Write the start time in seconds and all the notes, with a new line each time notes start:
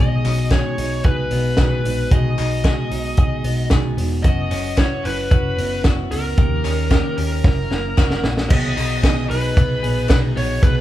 Already playing: B2 D#5
0.00 B1 B2 D#3 G#3 D#4 F#4 G#4
0.24 B1 G#3 C#4 D#4 F#4, clap, open hi-hat
0.38 D#4
0.50 B2 D#3 G#3 D#4 F#4 G#4 C#5, kick, snare, clap, closed hi-hat
0.78 B1 G#3 D#4 F#4, open hi-hat
1.04 B1 D#3 G#3 D#4 G#4 B4, kick, closed hi-hat
1.08 F#4
1.31 B1 G#3 B3 D#4 F#4, open hi-hat
1.57 B1 B2 D#3 G#3 D#4 F#4 G#4, kick, snare, clap, closed hi-hat
1.84 A#1 G#3 B3 D#4 F#4, open hi-hat
2.10 B1 B2 D#3 G#3 D#4 F#4 G#4 D#5, kick, closed hi-hat
2.37 B1 G#3 D#4 F#4, clap, open hi-hat
2.64 B2 D#3 G#3 D#4 F#4 G#4, kick, snare, clap, closed hi-hat
2.91 B1 G#3 D#4 F#4, open hi-hat
3.17 B1 D#3 G#3 D#4 G#4, kick, closed hi-hat
3.21 F#4
3.44 B1 B3 D#4 F#4, open hi-hat
3.48 G#3
3.70 B1 B2 D#3 G#3 D#4 F#4 G#4, kick, snare, clap, closed hi-hat
3.97 E1 B3 D#4 F#4, open hi-hat
4.02 G#3
4.23 F#1 F#2 F#3 C#4 E4 F#4 D#5, kick, closed hi-hat
4.27 B4
4.51 F#1 C#4 E4 B4, clap, open hi-hat
4.55 C#4
4.77 F#3 C#4 F#4 C#5, kick, snare, clap, closed hi-hat
4.81 E4 B4
5.04 F#1 C#4 E4 B4, open hi-hat
5.31 F#1 F#3 C#4 E4 F#4 B4, kick, closed hi-hat
5.57 F#1 B3 E4, open hi-hat
5.61 C#4
5.84 F#1 F#3 C#4 E4 F#4 B4, kick, snare, clap, closed hi-hat
6.11 C#2 B3 C#4 E4 A#4, open hi-hat
6.37 D#2 D#3 A#3 C#4 G4 A#4, kick, closed hi-hat
6.64 D#2 C#4 G4 A#4, clap, open hi-hat
6.91 D#3 A#3 C#4 G4 A#4, kick, snare, clap, closed hi-hat
7.17 D#2 C#4 G4 A#4, open hi-hat
7.44 F#1 F#2 F#3 C#4 E4 A#4, kick, snare
7.71 F#1 A#3 C#4 E4, snare
7.98 F#1 F#3 C#4 E4 F#4 A#4, kick, snare, clap
8.11 snare
8.24 A#1 A#3 C#4 E4 A#4, snare
8.37 snare
8.49 B1 B2 D#3 F#3 B3 D#4 G#4 D#5 D#6, kick, crash
8.76 B1 B3 D#4 G#4, clap, open hi-hat
8.81 F#3
9.03 B1 B2 D#3 F#3 B3 D#4 G#4, kick, snare, clap, hi-hat pedal, ride
9.29 B1 D#4 G#4 B4 B5, open hi-hat
9.33 F#3
9.56 B1 F#3 B3 D#4, kick, hi-hat pedal, ride
9.60 G#4
9.83 A#1 F#3 B3 D#4 G#4, open hi-hat
10.09 B2 D#3 F#3 B3 C#4 D#4 G#4 B4 B5, kick, snare, clap, hi-hat pedal, ride
10.22 D#4
10.35 A#1 F#3 B3 D#4 G#4 C#5 C#6, open hi-hat
10.62 B1 B2 D#3 F#3 B3 D#4 G#4 B4 B5, kick, hi-hat pedal, ride